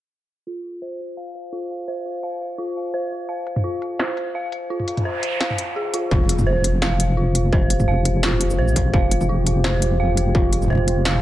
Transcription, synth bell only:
0.47 0.80 F4 medium
0.82 1.16 C5 medium
1.17 1.34 F5 loud
1.52 1.86 F4 medium
1.88 2.22 C5 loud
2.23 2.40 F5 medium
2.58 2.92 F4 medium
2.94 3.27 C5 loud
3.29 3.46 F5 medium
3.64 3.98 F4 medium
3.99 4.33 C5 loud
4.35 4.52 F5 loud
4.70 5.04 F4 medium
5.05 5.39 C5 loud
5.41 5.58 F5 loud
5.76 5.92 G#4 medium
5.94 6.10 F4 medium
6.12 6.45 F4 medium
6.47 6.80 C5 loud
6.82 6.99 F5 loud
7.17 7.51 F4 medium
7.53 7.86 C5 loud
7.88 8.05 F5 loud
8.23 8.57 F4 medium
8.59 8.92 C5 loud
8.93 9.10 F5 loud
9.29 9.63 F4 medium
9.64 9.98 C5 loud
10.00 10.17 F5 loud
10.35 10.69 F4 medium
10.70 11.04 C5 loud
11.05 11.22 F5 loud

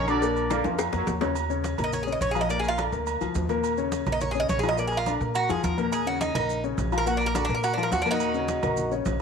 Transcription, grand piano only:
0.08 0.20 D3 medium
0.08 0.20 D4 medium
0.08 0.20 D5 medium
0.22 0.45 A#2 medium
0.22 0.45 A#3 medium
0.22 0.46 A#4 medium
0.51 0.62 D3 medium
0.51 0.62 D4 medium
0.51 0.63 D5 medium
0.65 0.88 F3 medium
0.65 0.88 F4 medium
0.65 0.88 F5 medium
0.93 1.16 A#3 medium
0.93 1.16 A#4 medium
0.93 1.17 A#5 medium
1.21 1.33 C#3 medium
1.21 1.33 C#4 medium
1.21 1.33 C#5 medium
1.50 1.73 C#3 medium
1.50 1.73 C#4 medium
1.50 1.73 C#5 medium
1.78 2.01 A#3 medium
1.78 2.02 A#4 medium
1.78 2.02 A#5 medium
2.07 2.30 C#3 medium
2.07 2.30 C#4 medium
2.07 2.31 C#5 medium
2.35 2.47 F3 medium
2.35 2.47 F4 medium
2.35 2.47 F5 medium
2.49 2.73 A#2 medium
2.49 2.73 A#3 medium
2.49 2.73 A#4 medium
2.78 2.90 D3 medium
2.78 2.90 D4 medium
2.78 2.90 D5 medium
2.92 3.16 A#3 medium
2.92 3.16 A#4 medium
2.92 3.16 A#5 medium
3.21 3.44 F3 medium
3.21 3.44 F4 medium
3.21 3.45 F5 medium
3.49 3.73 A#2 medium
3.49 3.73 A#3 medium
3.49 3.73 A#4 medium
3.78 4.01 C#3 medium
3.78 4.01 C#4 medium
3.78 4.02 C#5 medium
4.06 4.30 A#3 medium
4.06 4.30 A#4 medium
4.06 4.30 A#5 medium
4.35 4.58 C#3 medium
4.35 4.58 C#4 medium
4.35 4.59 C#5 medium
4.63 4.75 F3 medium
4.63 4.75 F4 medium
4.63 4.75 F5 medium
4.77 5.01 A#2 medium
4.77 5.01 A#3 medium
4.77 5.02 A#4 medium
5.06 5.18 D3 medium
5.06 5.18 D4 medium
5.06 5.18 D5 medium
5.21 5.44 A#3 medium
5.21 5.45 A#4 medium
5.21 5.45 A#5 medium
5.49 5.73 F3 medium
5.49 5.73 F4 medium
5.49 5.73 F5 medium
5.78 6.01 A#2 medium
5.78 6.01 A#3 medium
5.78 6.01 A#4 medium
6.06 6.30 C#3 medium
6.06 6.30 C#4 medium
6.06 6.30 C#5 medium
6.35 6.58 A#3 medium
6.35 6.58 A#4 medium
6.35 6.59 A#5 medium
6.64 6.87 C#3 medium
6.64 6.87 C#4 medium
6.64 6.87 C#5 medium
6.92 7.04 F3 medium
6.92 7.04 F4 medium
6.92 7.04 F5 medium
7.06 7.29 A#2 medium
7.06 7.30 A#3 medium
7.06 7.30 A#4 medium
7.34 7.46 D3 medium
7.34 7.47 D4 medium
7.34 7.47 D5 medium
7.49 7.73 A#3 medium
7.49 7.73 A#4 medium
7.49 7.73 A#5 medium
7.77 8.01 F3 medium
7.77 8.01 F4 medium
7.77 8.01 F5 medium
8.06 8.29 A#2 medium
8.06 8.29 A#3 medium
8.06 8.30 A#4 medium
8.34 8.58 C#3 medium
8.34 8.58 C#4 medium
8.34 8.58 C#5 medium
8.63 8.86 A#3 medium
8.63 8.86 A#4 medium
8.63 8.87 A#5 medium
8.91 9.15 C#3 medium
8.91 9.15 C#4 medium
8.91 9.15 C#5 medium

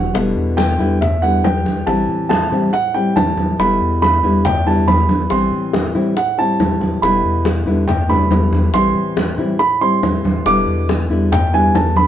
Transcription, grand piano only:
0.00 0.11 F#4 medium
0.00 0.11 F#5 medium
0.57 0.98 G5 medium
1.01 1.22 E5 medium
1.22 1.43 F#5 medium
1.44 1.84 G5 medium
1.86 2.27 A5 medium
2.29 2.70 A5 medium
2.73 2.94 F#5 medium
2.94 3.15 G5 medium
3.16 3.56 A5 medium
3.60 3.99 B5 medium
4.02 4.42 B5 medium
4.45 4.66 G5 medium
4.67 4.88 A5 medium
4.88 5.28 B5 medium
5.31 5.71 C6 medium
6.17 6.38 F#5 medium
6.39 6.99 A5 medium
7.02 7.42 B5 medium
7.88 8.09 G5 medium
8.10 8.70 B5 medium
8.74 9.14 C6 loud
9.59 9.81 B5 medium
9.81 10.42 C6 loud
10.46 10.86 D6 medium
11.32 11.53 G5 medium
11.54 11.75 G#5 medium
11.75 11.96 A5 medium
11.97 12.07 B5 medium

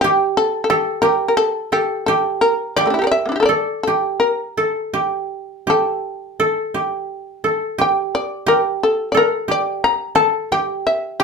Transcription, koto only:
0.00 0.70 A4 medium
0.04 1.02 G4 medium
0.70 1.72 A4 medium
1.02 2.08 G4 medium
1.72 3.48 A4 medium
2.08 2.77 G4 medium
2.77 3.87 G4 medium
3.49 4.57 A4 medium
3.87 4.93 G4 medium
4.57 6.39 A4 medium
4.94 5.67 G4 medium
5.67 6.74 G4 medium
6.40 7.44 A4 medium
6.74 7.78 G4 medium
7.44 9.14 A4 medium
7.78 8.46 G4 medium
8.46 9.48 G4 medium
9.14 10.15 A4 medium
9.48 10.51 G4 medium
10.15 11.23 A4 medium
10.52 11.19 G4 medium
11.20 11.23 G4 medium

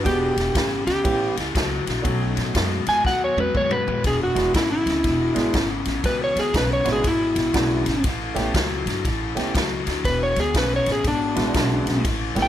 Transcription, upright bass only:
0.06 0.32 E1 medium
0.36 0.52 E1 medium
0.55 0.81 G#1 medium
0.87 1.02 D2 medium
1.05 1.31 A1 medium
1.38 1.52 C#2 medium
1.55 1.81 C#2 medium
1.87 2.02 A#1 medium
2.05 2.31 B1 medium
2.37 2.52 A2 medium
2.55 2.81 F#2 medium
2.87 3.02 E2 medium
3.05 3.31 D#2 medium
3.36 3.52 E2 medium
3.55 3.81 F#2 medium
3.87 4.02 D#2 medium
4.04 4.31 E1 medium
4.36 4.51 E1 medium
4.55 4.81 G#1 medium
4.86 5.01 D2 medium
5.04 5.31 E1 medium
5.36 5.51 G#1 medium
5.54 5.81 G#1 medium
5.85 6.01 A1 medium
6.04 6.31 C#2 medium
6.36 6.51 D2 medium
6.54 6.81 B1 medium
6.86 7.01 A1 medium
7.04 7.31 G#1 medium
7.36 7.51 A1 medium
7.54 7.81 B1 medium
7.87 8.02 G#1 medium
8.04 8.31 A1 medium
8.35 8.51 A1 medium
8.55 8.81 C#2 medium
8.86 9.01 G1 medium
9.05 9.32 A1 medium
9.36 9.52 C#2 medium
9.55 9.82 C#2 medium
9.87 10.02 D2 medium
10.05 10.31 E1 medium
10.36 10.52 D2 medium
10.54 10.81 B1 medium
10.87 11.02 A1 medium
11.05 11.32 G#1 medium
11.37 11.52 A1 medium
11.55 11.81 B1 medium
11.86 12.02 B1 medium
12.05 12.32 A1 medium
12.35 12.48 A1 medium

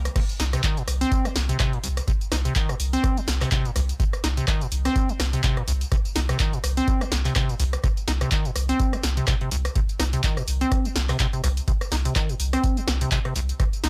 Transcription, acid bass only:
0.16 0.20 C3 medium
0.40 0.44 D#4 medium
0.53 0.62 C3 medium
0.64 0.79 D#3 medium
0.77 0.83 A#2 medium
1.01 1.27 C4 loud
1.25 1.29 F3 medium
1.49 1.58 C3 medium
1.60 1.75 C3 loud
1.73 1.79 A#2 medium
1.84 1.88 C2 loud
2.08 2.12 C3 medium
2.32 2.36 D#4 medium
2.45 2.54 C3 medium
2.56 2.71 D#3 medium
2.69 2.75 A#2 medium
2.93 3.19 C4 loud
3.17 3.21 F3 medium
3.41 3.50 C3 medium
3.52 3.67 C3 loud
3.65 3.71 A#2 medium
3.76 3.80 C2 loud
4.00 4.04 C3 medium
4.24 4.28 D#4 medium
4.37 4.46 C3 medium
4.48 4.63 D#3 medium
4.61 4.67 A#2 medium
4.85 5.11 C4 loud
5.09 5.13 F3 medium
5.33 5.42 C3 medium
5.44 5.59 C3 loud
5.57 5.63 A#2 medium
5.68 5.72 C2 loud
5.92 5.96 C3 medium
6.16 6.20 D#4 medium
6.29 6.38 C3 medium
6.40 6.55 D#3 medium
6.53 6.59 A#2 medium
6.77 7.03 C4 loud
7.01 7.05 F3 medium
7.25 7.34 C3 medium
7.49 7.55 A#2 medium
7.60 7.64 C2 loud
7.84 7.88 C3 medium
8.08 8.12 D#4 medium
8.21 8.30 C3 medium
8.32 8.47 D#3 medium
8.45 8.51 A#2 medium
8.69 8.95 C4 loud
8.93 8.97 F3 medium
9.17 9.26 C3 medium
9.28 9.35 C3 loud
9.41 9.50 C3 medium
9.52 9.56 C2 loud
9.76 9.80 C3 medium
10.00 10.04 D#4 medium
10.13 10.22 C3 medium
10.24 10.39 D#3 medium
10.37 10.43 A#2 medium
10.61 10.87 C4 loud
10.85 10.89 F3 medium
11.09 11.18 C3 medium
11.20 11.27 C3 loud
11.33 11.42 C3 medium
11.44 11.48 C2 loud
11.68 11.72 C3 medium
11.92 11.96 D#4 medium
12.05 12.14 C3 medium
12.16 12.31 D#3 medium
12.29 12.35 A#2 medium
12.53 12.79 C4 loud
12.77 12.81 F3 medium
13.01 13.10 C3 medium
13.25 13.34 C3 medium
13.36 13.40 C2 loud
13.60 13.64 C3 medium
13.84 13.88 D#4 medium

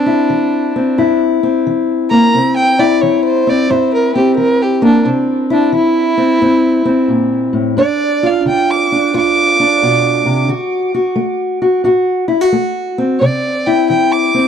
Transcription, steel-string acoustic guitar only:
0.00 0.25 C3 medium
0.00 0.75 C4 medium
0.06 0.98 E4 medium
0.30 0.93 E3 medium
0.76 1.43 C4 medium
0.98 1.61 G2 medium
0.98 2.79 E4 medium
1.43 2.34 C4 medium
1.67 2.29 E3 medium
2.11 2.37 A#3 medium
2.34 2.97 C3 medium
2.34 3.47 C4 medium
2.79 3.70 E4 medium
3.03 3.65 E3 medium
3.47 4.14 C4 medium
3.70 4.33 G2 medium
3.70 5.49 E4 medium
4.15 5.03 C4 medium
4.37 5.01 E3 medium
4.82 5.03 A#3 medium
5.05 5.68 C3 medium
5.05 6.16 C4 medium
5.50 7.78 E4 medium
5.72 6.36 E3 medium
6.18 6.40 C4 medium
6.41 7.05 G2 medium
6.41 6.84 C4 medium
6.85 7.74 C4 medium
7.08 7.52 A#2 medium
7.53 7.77 A2 medium
7.77 8.40 G2 medium
7.77 8.92 D4 medium
8.23 9.13 F4 medium
8.45 9.09 D3 medium
8.92 9.59 D4 medium
9.14 9.77 G2 medium
9.14 10.47 F4 medium
9.60 10.47 D4 medium
9.82 10.25 B2 medium
10.26 10.49 C3 medium
10.49 11.12 D3 medium
10.49 10.93 F#4 medium
10.94 11.61 F#4 medium
11.16 11.79 A3 medium
11.62 11.83 F#4 medium
11.84 12.47 A2 medium
11.84 12.28 F#4 medium
12.28 12.41 E4 medium
12.41 13.20 F#4 medium
12.52 13.15 A3 medium
12.98 13.18 C4 medium
13.21 13.84 C3 medium
13.21 14.33 C4 medium
13.67 14.48 E4 medium
13.90 14.48 E3 medium
14.34 14.48 C4 medium

